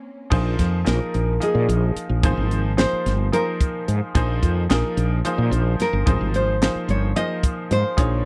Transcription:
Already playing: A#3 C4 C#4
0.30 A#1 F3 A#3 D#4 G#4 C5, kick, crash
0.59 F2, kick, snare, closed hi-hat
0.84 A#1 F3 A#3 D#4 G#4 A#4, snare, closed hi-hat
0.89 A#4
1.14 A#1, closed hi-hat
1.40 F3 A#3 D#4 G#4 D#5, closed hi-hat
1.55 A#2
1.69 A#1, closed hi-hat
1.96 muted fretless electric bass stroke, closed hi-hat
2.09 A#1
2.23 G#1 F3 A#3 D#4 G#4 C5, kick, closed hi-hat
2.37 G#1
2.51 closed hi-hat
2.77 F3 A#3 D#4 G#4 C5, snare, closed hi-hat
2.92 muted fretless electric bass stroke
3.06 G1, snare, closed hi-hat
3.32 F3 A#3 D#4 G#4 A#4 C5, closed hi-hat
3.61 kick, closed hi-hat
3.88 G#2, closed hi-hat
4.15 A#1 F3 A#3 D#4 G#4 C5, kick, closed hi-hat
4.43 F2, kick, closed hi-hat
4.69 A#1 F3 A#3 D#4 G#4 A#4, snare, closed hi-hat
4.97 A#1, closed hi-hat
5.25 F3 A#3 D#4 G#4 C5, closed hi-hat
5.38 A#2
5.51 A#1, closed hi-hat
5.79 A#4, muted fretless electric bass stroke, snare, closed hi-hat
5.93 G1
6.06 G#1 F3 A#3 D#4 G#4 C5, kick, closed hi-hat
6.21 G#1
6.34 C5, closed hi-hat
6.62 F3 A#3 D#4 G#4 C5, snare, closed hi-hat
6.75 muted fretless electric bass stroke
6.88 G1 C#5, closed hi-hat
7.16 F3 A#3 D#4 G#4 C5 D#5, closed hi-hat
7.43 kick, closed hi-hat
7.71 G#2 C5, closed hi-hat
7.97 A#1 C#3 F3 G#3 A#3 C#4 D#4 G#4 C#5, kick, closed hi-hat

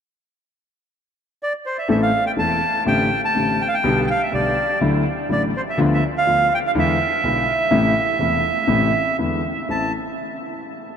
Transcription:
1.43 D5
1.66 C5
1.78 E5
1.88 A1 A2 E3 A3 C4 A4 E5
2.03 F5
2.27 G5
2.37 E1 E2 E3 A3 C4 A4 A5
2.85 A1 A2 D3 A3 C4 G4 G5
3.25 A5
3.35 A1 A2 D3 A3 C4 G4
3.61 G5
3.68 F5
3.74 G5
3.84 B1 B2 D3 G3 B3 G4
4.07 F5 G5
4.23 E5
4.32 B1 B2 D3 G3 B3 G4 D5
4.81 D2 D3 F#3 A3 E4
5.29 A1 A2 D3 F#3 A3 E4 D5
5.57 C5
5.70 E5
5.78 D2 D3 F3 B3 F4
5.94 E5
6.18 F5
6.26 D2 D3 F3 B3 F4
6.54 G5
6.67 F5
6.75 E2 D3 E3 G#3 B3 E4
6.79 E5
7.23 B1 B2 D3 G#3 B3 E4
7.71 A1 A2 C3 E3 A3 E4
8.19 E1 E2 C3 E3 A3 E4
8.67 A1 A2 C3 E3 A3 E4
9.19 E2 D3 E3 G#3 B3 E4
9.69 A1 A3 C4 E4 A5

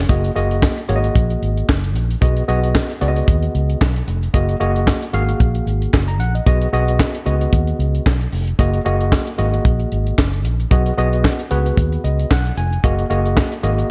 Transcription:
0.09 F#1 A#3 F#4 G#4 D#5, kick, closed hi-hat
0.24 closed hi-hat
0.35 F#1 A#3 F#4 G#4 D#5, closed hi-hat
0.51 closed hi-hat
0.62 kick, snare, clap
0.77 closed hi-hat
0.89 G#1 A#3 F#4 G#4 C#5, closed hi-hat
0.96 D#5
1.04 closed hi-hat
1.16 A#1, kick, closed hi-hat
1.30 closed hi-hat
1.42 G#1, closed hi-hat
1.57 closed hi-hat
1.69 F#1, kick, snare, clap
1.84 closed hi-hat
1.95 A#1, closed hi-hat
2.11 closed hi-hat
2.21 B1 B3 F#4 G#4 D#5, kick, closed hi-hat
2.37 closed hi-hat
2.48 B1 B3 F#4 G#4 D#5, closed hi-hat
2.64 closed hi-hat
2.75 kick, snare, clap
2.90 closed hi-hat
3.01 C#2 B3 F#4 G#4 D5, closed hi-hat
3.08 D#5
3.16 closed hi-hat
3.28 D#2, kick, closed hi-hat
3.43 closed hi-hat
3.55 C#2, closed hi-hat
3.70 closed hi-hat
3.81 B1, kick, snare, clap
3.96 closed hi-hat
4.08 F1, closed hi-hat
4.23 closed hi-hat
4.34 F#1 A#3 F#4 G#4 D#5, kick, closed hi-hat
4.49 closed hi-hat
4.60 F#1 A#3 F#4 G#4 D#5, closed hi-hat
4.76 closed hi-hat
4.87 kick, snare, clap
5.02 closed hi-hat
5.13 G#1 A#3 F#4 G#4 F5, closed hi-hat
5.29 closed hi-hat
5.40 A#1, kick, closed hi-hat
5.55 closed hi-hat
5.66 G#1, closed hi-hat
5.82 closed hi-hat
5.94 F#1, kick, snare, clap
6.08 A#5, closed hi-hat
6.20 A#1 F#5, closed hi-hat
6.35 D#5, closed hi-hat
6.46 B1 B3 F#4 G#4 D#5, kick, closed hi-hat
6.62 closed hi-hat
6.73 B1 B3 F#4 G#4 D#5, closed hi-hat
6.88 closed hi-hat
7.00 kick, snare, clap
7.15 closed hi-hat
7.26 C#2 B3 F#4 G#4 D#5, closed hi-hat
7.41 closed hi-hat
7.53 D#2, kick, closed hi-hat
7.67 closed hi-hat
7.79 C#2, closed hi-hat
7.95 closed hi-hat
8.06 B1, kick, snare, clap
8.21 closed hi-hat
8.32 F1, open hi-hat
8.48 closed hi-hat
8.59 F#1 A#3 F#4 G#4 D#5, kick, closed hi-hat
8.74 closed hi-hat
8.85 F#1 A#3 F#4 G#4 D#5, closed hi-hat
9.01 closed hi-hat
9.12 kick, snare, clap
9.27 closed hi-hat
9.38 G#1 A#3 F#4 G#4 D#5, closed hi-hat
9.53 closed hi-hat
9.65 A#1, kick, closed hi-hat
9.80 closed hi-hat
9.92 G#1, closed hi-hat
10.07 closed hi-hat
10.18 F#1, kick, snare, clap
10.33 closed hi-hat
10.45 A#1, closed hi-hat
10.60 closed hi-hat
10.71 B1 B3 F#4 G#4 D#5, kick, closed hi-hat
10.86 closed hi-hat
10.98 B1 B3 F#4 G#4 D#5, closed hi-hat
11.13 closed hi-hat
11.24 kick, snare, clap
11.39 closed hi-hat
11.50 C#2 B3 F#4 G#4 B4, closed hi-hat
11.66 closed hi-hat
11.77 D#2, kick, closed hi-hat
11.92 closed hi-hat
12.04 C#2 D#5, closed hi-hat
12.20 closed hi-hat
12.31 B1 F#5, kick, snare, clap
12.46 closed hi-hat
12.57 F1 G#5, closed hi-hat
12.73 closed hi-hat
12.84 F#1 A#3 F#4 G#4 D#5, kick, closed hi-hat
12.99 closed hi-hat
13.10 F#1 A#3 F#4 G#4 D#5, closed hi-hat
13.26 closed hi-hat
13.37 kick, snare, clap
13.52 closed hi-hat
13.63 G#1 A#3 F#4 G#4 D#5, closed hi-hat
13.78 closed hi-hat

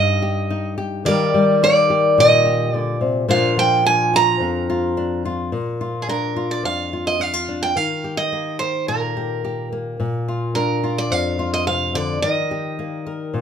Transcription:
Already playing: G2 G3 D#4 G4 D#5
0.22 G4
0.50 D#4
0.78 G4
1.05 D#3 G3 A#3 G4 A#4 D5
1.34 G3
1.63 A#3 D5
1.90 G4
2.18 A#2 D#5
2.45 G4
2.74 D3 D5
3.01 C3
3.28 A#2 F3 D4 F4 F5
3.57 F3 G5
3.86 D4 G#5
4.14 F4 A#5
4.40 F2
4.70 F4
4.97 D4
5.25 F4
5.52 A#2
5.81 F4
6.02 G#4
6.08 D4 A#4
6.36 F4
6.51 D5
6.63 F2 F5
6.93 F4
7.07 D#5
7.19 D4 F5
7.34 F4
7.49 D4
7.63 G5
7.76 D#3 F5
8.04 G4
8.17 D#5
8.32 A#3
8.59 A#4 C5
8.88 A#2 A#4
9.17 G4
9.45 G4
9.72 A#3
10.00 A#2
10.28 F4
10.55 D4 A#4
10.84 F4
10.98 D5
11.10 F2 F5
11.39 F4
11.54 D#5
11.67 C3 F5
11.95 D3 D5
12.22 D#3 D#5
12.51 G4
12.79 A#3
13.07 A#4
13.34 A#2

